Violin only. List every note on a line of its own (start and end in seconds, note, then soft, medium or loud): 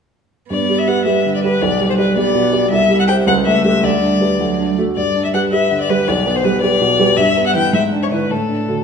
0.51 0.80 D5 medium
0.79 0.89 E5 medium
0.88 1.05 F#5 medium
1.05 1.33 E5 soft
1.35 1.43 D5 medium
1.44 1.63 B4 medium
1.62 1.89 D5 medium
1.90 1.94 C5 medium
1.98 2.16 B4 medium
2.17 2.70 D5 medium
2.71 2.98 E5 medium
3.00 3.03 F#5 medium
3.08 3.15 G5 medium
3.28 3.35 F#5 medium
3.45 3.64 E5 medium
3.64 3.85 E5 medium
3.84 4.78 D5 medium
4.96 5.22 D5 medium
5.24 5.28 E5 soft
5.34 5.41 F#5 medium
5.52 5.80 E5 medium
5.81 5.92 D5 medium
5.90 6.10 B4 medium
6.08 6.38 D5 medium
6.36 6.46 C5 medium
6.44 6.61 B4 medium
6.62 7.18 D5 medium
7.17 7.45 E5 medium
7.46 7.55 F#5 medium
7.56 7.74 G5 medium
7.74 7.82 E5 medium
8.03 8.07 C#5 medium
8.12 8.32 B4 soft
8.31 8.84 A4 soft